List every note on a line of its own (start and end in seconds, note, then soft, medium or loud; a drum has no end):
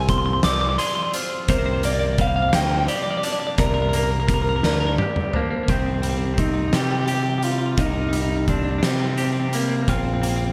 0.00 0.40 C2 medium
0.00 1.14 C3 medium
0.00 0.43 C4 medium
0.00 0.79 F4 medium
0.00 0.44 G#4 medium
0.00 0.44 C5 medium
0.00 0.09 G#5 medium
0.09 1.49 F3 medium
0.09 0.18 C6 medium
0.09 kick medium
0.09 closed hi-hat medium
0.18 0.25 C6 medium
0.26 0.33 C6 medium
0.33 0.41 C6 medium
0.43 0.76 C2 medium
0.43 1.49 C4 medium
0.43 1.14 D5 medium
0.43 0.52 D6 loud
0.43 snare medium
0.43 closed hi-hat medium
0.53 0.61 D6 medium
0.61 0.68 D6 medium
0.69 0.77 D6 medium
0.78 1.49 G#4 medium
0.78 0.86 C6 medium
0.78 closed hi-hat medium
0.87 0.95 C6 medium
0.95 1.03 C6 medium
1.03 1.11 C6 medium
1.14 1.49 F4 medium
1.14 1.49 C5 medium
1.14 closed hi-hat medium
1.48 2.50 C2 medium
1.48 3.24 C3 medium
1.48 5.65 C3 medium
1.48 5.65 C4 medium
1.48 5.65 G4 medium
1.48 2.19 A#4 medium
1.48 5.65 A#4 medium
1.48 1.58 C5 loud
1.48 kick medium
1.48 closed hi-hat medium
1.58 1.65 C5 medium
1.66 1.73 C5 medium
1.73 1.81 C5 medium
1.83 2.52 A#3 medium
1.83 1.92 D5 medium
1.83 closed hi-hat medium
1.93 1.99 D5 medium
1.99 2.06 D5 medium
2.06 2.13 D5 medium
2.13 2.20 D5 medium
2.18 3.93 G3 medium
2.18 2.89 C5 medium
2.18 2.27 F5 loud
2.18 kick medium
2.18 closed hi-hat medium
2.27 2.34 F5 medium
2.36 2.42 F5 medium
2.42 2.49 F5 medium
2.49 2.55 F5 medium
2.49 snare loud
2.49 closed hi-hat medium
2.53 2.86 D2 medium
2.53 3.92 A#3 medium
2.53 2.63 G5 medium
2.63 2.71 G5 medium
2.71 2.79 G5 medium
2.79 2.87 G5 medium
2.88 4.63 G4 medium
2.88 2.95 D5 medium
2.88 closed hi-hat medium
2.96 3.02 D5 medium
3.03 3.10 D5 medium
3.11 3.17 D5 medium
3.17 3.25 D5 medium
3.23 4.99 D4 medium
3.23 3.32 D5 medium
3.23 closed hi-hat medium
3.32 3.39 D5 medium
3.40 3.46 D5 medium
3.47 3.54 D5 medium
3.58 4.60 C2 medium
3.58 5.34 C3 medium
3.58 3.66 A#4 medium
3.58 3.94 D5 medium
3.58 kick medium
3.58 closed hi-hat medium
3.66 3.73 A#4 medium
3.74 3.81 A#4 medium
3.82 3.89 A#4 medium
3.89 3.96 A#4 medium
3.93 4.62 A#3 medium
3.93 4.64 A#4 medium
3.93 4.03 A#4 medium
3.93 closed hi-hat medium
4.03 4.11 A#4 medium
4.11 4.19 A#4 medium
4.20 4.27 A#4 medium
4.28 5.69 G3 medium
4.28 4.34 A#4 medium
4.28 kick medium
4.28 closed hi-hat medium
4.34 4.42 A#4 medium
4.42 4.49 A#4 medium
4.49 4.56 A#4 medium
4.56 4.64 A#4 medium
4.63 4.96 D2 medium
4.63 5.69 A#3 medium
4.63 4.71 A#4 medium
4.63 5.34 D5 medium
4.63 snare medium
4.72 4.79 A#4 medium
4.80 4.86 A#4 medium
4.87 4.94 A#4 medium
4.98 5.68 G4 medium
4.98 high tom medium
5.16 mid tom medium
5.33 5.41 A#3 medium
5.33 5.69 D4 medium
5.33 5.68 C5 medium
5.33 mid tom medium
5.42 5.49 A#3 medium
5.50 5.56 A#3 medium
5.56 5.63 A#3 medium
5.63 5.70 A#3 medium
5.68 6.70 C2 medium
5.68 7.43 C3 medium
5.68 10.53 D#3 medium
5.68 5.79 C4 medium
5.68 9.85 G4 soft
5.68 7.77 C5 soft
5.68 9.85 G5 medium
5.68 kick medium
5.68 closed hi-hat medium
5.79 5.86 C4 soft
5.86 5.94 C4 medium
5.94 6.02 C4 medium
6.02 6.72 G3 medium
6.02 6.09 C4 medium
6.02 closed hi-hat soft
6.09 6.17 C4 medium
6.18 6.25 C4 medium
6.25 6.33 C4 soft
6.34 6.39 C4 medium
6.38 8.13 C4 medium
6.38 6.46 D#4 medium
6.38 kick medium
6.38 closed hi-hat medium
6.47 6.53 D#4 soft
6.54 6.61 D#4 medium
6.62 6.67 D#4 soft
6.68 6.75 D#4 medium
6.73 7.74 C3 medium
6.73 7.42 G3 medium
6.73 6.83 G4 medium
6.73 snare medium
6.73 closed hi-hat medium
6.83 6.91 G4 soft
6.91 6.99 G4 medium
6.99 7.06 G4 medium
7.06 7.14 G4 medium
7.06 8.83 G4 medium
7.06 closed hi-hat medium
7.15 7.22 G4 medium
7.23 7.29 G4 medium
7.30 7.38 G4 medium
7.38 7.44 G4 medium
7.43 8.12 G3 medium
7.43 7.51 F4 medium
7.43 closed hi-hat medium
7.52 7.58 F4 soft
7.58 7.65 F4 medium
7.66 7.72 F4 soft
7.72 7.80 F4 soft
7.77 8.79 C2 medium
7.77 9.53 C3 medium
7.77 7.86 D#4 medium
7.77 10.53 A#4 soft
7.77 kick medium
7.77 closed hi-hat medium
7.86 7.93 D#4 medium
7.93 8.01 D#4 medium
8.01 8.08 D#4 medium
8.09 8.15 D#4 medium
8.13 8.82 G3 medium
8.13 8.22 D#4 medium
8.13 closed hi-hat medium
8.22 8.29 D#4 medium
8.30 8.36 D#4 medium
8.37 8.44 D#4 medium
8.48 9.88 C4 medium
8.48 8.56 D4 medium
8.48 kick medium
8.48 closed hi-hat soft
8.57 8.63 D4 medium
8.63 8.71 D4 medium
8.71 8.78 D4 medium
8.78 8.84 D4 medium
8.83 9.84 C3 medium
8.83 9.51 G3 medium
8.83 8.91 C4 medium
8.83 snare medium
8.83 closed hi-hat medium
8.91 8.99 C4 soft
9.00 9.08 C4 medium
9.08 9.16 C4 medium
9.16 9.24 C4 medium
9.16 9.88 G4 medium
9.16 closed hi-hat soft
9.24 9.32 C4 soft
9.32 9.39 C4 medium
9.40 9.48 C4 soft
9.48 9.56 C4 medium
9.53 9.88 G3 medium
9.53 9.62 A#3 medium
9.53 closed hi-hat medium
9.62 9.69 A#3 medium
9.69 9.75 A#3 medium
9.75 9.82 A#3 medium
9.83 9.90 A#3 medium
9.88 10.53 A#1 medium
9.88 10.53 A#2 medium
9.88 9.97 C4 medium
9.88 10.53 F4 medium
9.88 10.53 F5 medium
9.88 kick medium
9.88 closed hi-hat medium
9.98 10.05 C4 medium
10.05 10.13 C4 medium
10.14 10.21 C4 medium
10.22 10.53 A#3 medium
10.22 10.29 C4 medium
10.22 closed hi-hat medium
10.29 10.36 C4 medium
10.36 10.44 C4 medium
10.45 10.53 C4 medium